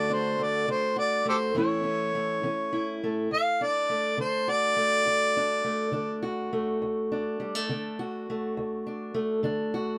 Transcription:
0.00 0.33 D2 medium
0.00 0.67 D3 medium
0.00 0.38 A3 medium
0.00 0.95 F#4 medium
0.00 0.15 D5 medium
0.10 0.66 D4 medium
0.10 0.44 C5 medium
0.39 1.24 A3 medium
0.43 0.70 D5 medium
0.68 1.21 D3 medium
0.68 1.52 D4 medium
0.68 0.97 C5 medium
0.96 1.52 F#4 medium
0.96 1.25 D5 medium
1.25 1.52 A3 medium
1.25 1.37 G4 medium
1.25 1.36 A4 medium
1.25 1.55 C5 medium
1.55 2.08 A2 medium
1.55 2.42 E3 medium
1.55 2.14 A3 medium
1.55 1.82 C#4 medium
1.55 2.71 E4 medium
1.55 2.99 C#5 medium
1.83 2.43 C#4 medium
2.15 3.02 A3 medium
2.43 2.96 E3 medium
2.43 3.28 C#4 medium
2.73 3.31 E4 medium
3.04 3.28 A3 medium
3.31 3.83 D2 medium
3.31 3.64 F5 medium
3.61 4.18 D4 medium
3.61 4.18 D5 medium
3.89 4.76 A3 medium
4.18 4.70 D3 medium
4.18 5.36 D4 medium
4.18 4.51 C5 medium
4.48 6.22 F#4 medium
4.48 6.19 D5 loud
4.77 5.64 A3 medium
5.06 5.58 D2 medium
5.37 5.92 D4 medium
5.64 6.52 A3 medium
5.92 6.45 D3 medium
5.92 7.11 D4 medium
6.22 7.43 F#4 medium
6.53 7.39 A3 medium
6.82 7.33 D2 medium
7.12 7.70 D4 medium
7.40 7.55 G3 medium
7.55 8.27 A3 soft
7.69 8.21 D3 medium
7.69 8.86 D4 medium
7.99 9.74 F#4 medium
8.30 9.14 A3 medium
8.57 9.08 D2 medium
8.87 9.43 D4 medium
9.14 9.98 A3 medium
9.43 9.95 D3 medium
9.43 9.98 D4 medium
9.74 9.98 F#4 medium

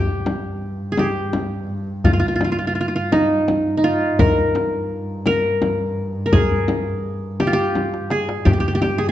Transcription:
0.00 4.18 G2 medium
0.00 0.98 G4 medium
0.26 darbuka tek medium
0.26 frame drum medium
0.92 1.05 G#4 medium
0.97 2.25 G4 medium
0.97 darbuka tek medium
0.97 frame drum medium
1.33 darbuka tek medium
1.33 frame drum medium
1.69 darbuka ka soft
2.04 2.13 F4 medium
2.04 darbuka dum medium
2.04 frame drum medium
2.13 2.19 F4 medium
2.20 2.28 F4 medium
2.28 2.35 F4 soft
2.36 2.44 F4 medium
2.41 2.51 F4 soft
2.41 darbuka tek medium
2.41 frame drum medium
2.52 2.58 F4 medium
2.59 2.67 F4 soft
2.67 2.75 F4 medium
2.75 2.80 F4 soft
2.81 2.88 F4 medium
2.88 2.95 F4 soft
2.96 3.84 F4 medium
3.12 3.77 D#4 medium
3.12 darbuka tek medium
3.12 frame drum medium
3.48 darbuka tek medium
3.48 frame drum medium
3.77 5.22 D#4 medium
3.84 5.18 F4 medium
3.84 darbuka ka soft
4.19 8.45 G2 medium
4.19 5.26 A#4 medium
4.19 frame drum medium
4.19 darbuka dum medium
4.55 darbuka tek medium
4.55 frame drum medium
5.26 6.25 A#4 medium
5.26 darbuka tek medium
5.26 frame drum medium
5.62 darbuka tek medium
5.62 frame drum medium
5.98 darbuka ka soft
6.26 7.39 A#4 medium
6.32 7.46 G#4 medium
6.32 darbuka dum medium
6.32 frame drum medium
6.68 darbuka tek medium
6.68 frame drum medium
7.40 7.53 G4 medium
7.40 darbuka tek medium
7.40 frame drum medium
7.47 8.82 F4 medium
7.53 8.17 G4 medium
7.75 darbuka tek soft
7.75 frame drum medium
7.94 darbuka ka medium
8.10 8.51 G#4 medium
8.10 darbuka tek medium
8.29 darbuka ka medium
8.45 9.12 G2 medium
8.45 8.53 G4 medium
8.45 frame drum medium
8.45 darbuka dum medium
8.53 8.60 G4 medium
8.60 8.68 G4 medium
8.68 8.75 G4 medium
8.75 8.81 G4 medium
8.82 9.04 G4 medium
8.82 darbuka tek medium
8.82 frame drum medium
8.98 9.08 G#4 medium
9.09 9.12 G#4 medium

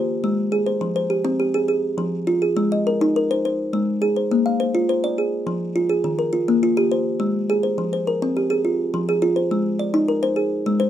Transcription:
0.00 0.39 C5 medium
0.24 0.53 G#3 medium
0.52 0.82 G#4 medium
0.66 0.95 C5 medium
0.81 1.11 F3 medium
0.96 1.40 C5 medium
1.10 1.38 G4 medium
1.25 1.54 C4 medium
1.40 1.84 G4 medium
1.54 1.67 G#4 medium
1.68 2.12 G#4 medium
1.98 2.27 F3 medium
2.27 2.56 F4 medium
2.42 2.71 G#4 medium
2.57 2.85 G#3 medium
2.72 3.15 D#5 medium
2.87 3.15 A#4 medium
3.01 3.30 D#4 medium
3.16 3.59 A#4 medium
3.31 3.44 C5 medium
3.45 3.88 C5 medium
3.73 4.02 G#3 medium
4.02 4.31 G#4 medium
4.16 4.45 C5 medium
4.31 4.60 A#3 medium
4.46 4.89 F5 medium
4.60 4.88 C5 medium
4.75 5.03 F4 medium
4.89 5.32 C5 medium
5.04 5.18 D5 medium
5.18 5.61 G#4 medium
5.47 5.75 F3 medium
5.76 6.04 F4 medium
5.89 6.19 G#4 medium
6.04 6.33 D#3 medium
6.19 6.62 A#4 medium
6.33 6.62 F4 medium
6.48 6.77 A#3 medium
6.63 7.06 F4 medium
6.77 6.91 G4 medium
6.92 7.35 C5 medium
7.20 7.49 G#3 medium
7.50 7.78 G#4 medium
7.63 7.92 C5 medium
7.78 8.07 F3 medium
7.93 8.36 C5 medium
8.07 8.50 A#4 medium
8.22 8.51 C4 medium
8.37 8.79 G4 medium
8.50 8.79 G#4 medium
8.65 9.08 F4 medium
8.94 9.22 F3 medium
9.09 9.51 G#4 medium
9.22 9.51 F4 medium
9.36 9.65 C5 medium
9.51 9.80 G#3 medium
9.79 10.23 D5 medium
9.94 10.23 D#4 medium
10.08 10.52 A#4 medium
10.23 10.52 C5 medium
10.36 10.80 G#4 medium
10.66 10.90 G#3 medium
10.80 10.90 C5 medium

